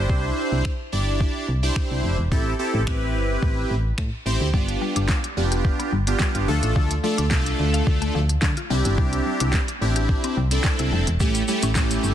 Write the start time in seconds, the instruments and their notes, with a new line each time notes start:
Already playing: analog polysynth D4 E4 G4 C5
0.09 fm bass C2, kick
0.52 fm bass C2
0.65 finger snap, kick
0.92 fm bass G1, analog polysynth D4 E4 G4 D5
1.20 kick
1.48 fm bass C2
1.63 analog polysynth D4 E4 G4 C5
1.76 finger snap, kick
1.91 fm bass C2
2.04 fm bass F1
2.18 fm bass E1
2.31 fm bass A1, analog polysynth C4 E4 G4 A4, kick
2.59 analog polysynth C4 E4 G4 A4
2.74 fm bass A1
2.87 fm bass A1, analog polysynth C4 E4 G4, finger snap, kick
3.15 fm bass G1
3.43 fm bass A1, kick
3.70 fm bass A1
3.98 fm bass A2, finger snap, kick
4.26 fm bass A1, analog polysynth C4 E4 G4 C5
4.41 fm bass D2
4.53 fm bass G1, synth arpeggio sound G3, analog polysynth B3 D4 F4 G4, kick
4.69 closed hi-hat
4.81 synth arpeggio sound G3
4.96 fm bass G1, synth arpeggio sound D4, closed hi-hat
5.08 kick, snare, clap
5.24 closed hi-hat
5.37 fm bass F1, analog polysynth B3 D4 F4 G4
5.52 synth arpeggio sound G4, closed hi-hat
5.65 kick
5.79 synth arpeggio sound B3, closed hi-hat
5.92 fm bass G1, synth arpeggio sound G3
6.07 analog polysynth B3 D4 F4 G4, closed hi-hat
6.19 synth arpeggio sound G3, kick, snare, clap
6.35 fm bass G1, synth arpeggio sound F4, closed hi-hat
6.48 fm bass D2, synth arpeggio sound F3, analog polysynth A3 D4 F4 A4
6.63 fm bass A1, closed hi-hat
6.76 fm bass D2, synth arpeggio sound F3, kick
6.91 closed hi-hat
7.03 synth arpeggio sound F3, analog polysynth A3 D4 F4 A4
7.18 fm bass D2, synth arpeggio sound D4, closed hi-hat
7.31 fm bass C2, analog polysynth A3 D4 F4 A4, kick, snare, clap
7.46 closed hi-hat
7.59 fm bass D2
7.74 synth arpeggio sound F5, closed hi-hat
7.87 fm bass D2, kick
8.02 synth arpeggio sound A3, closed hi-hat
8.15 fm bass D2, synth arpeggio sound F3
8.29 closed hi-hat
8.42 fm bass D3, synth arpeggio sound F3, kick, snare, clap
8.57 synth arpeggio sound F4, closed hi-hat
8.70 fm bass C2, synth arpeggio sound G3, analog polysynth C4 D4 E4 G4
8.85 fm bass G1, closed hi-hat
8.98 fm bass C2, synth arpeggio sound G3, kick
9.13 closed hi-hat
9.26 synth arpeggio sound G3
9.40 fm bass C2, synth arpeggio sound D4, closed hi-hat
9.53 kick, snare, clap
9.68 closed hi-hat
9.81 fm bass A1, analog polysynth C4 D4 E4 G4
9.96 synth arpeggio sound G4, closed hi-hat
10.09 kick
10.24 synth arpeggio sound C4, closed hi-hat
10.37 fm bass C2, synth arpeggio sound G3
10.51 analog polysynth C4 D4 E4 A4, closed hi-hat
10.64 synth arpeggio sound G3, kick, snare, clap
10.79 fm bass C2, synth arpeggio sound E4, closed hi-hat
10.92 fm bass F1, synth arpeggio sound G3
11.07 fm bass E1, closed hi-hat
11.20 fm bass A1, synth arpeggio sound G3, analog polysynth A3 C#4 E4 G4, kick, shaker
11.35 closed hi-hat, shaker
11.48 synth arpeggio sound G3, analog polysynth A3 C#4 E4 G4, shaker
11.63 fm bass A1, synth arpeggio sound C#4, closed hi-hat, shaker
11.75 fm bass A1, analog polysynth A3 C#4 E4 G4, kick, snare, clap, shaker
11.91 closed hi-hat, shaker
12.04 fm bass G1, shaker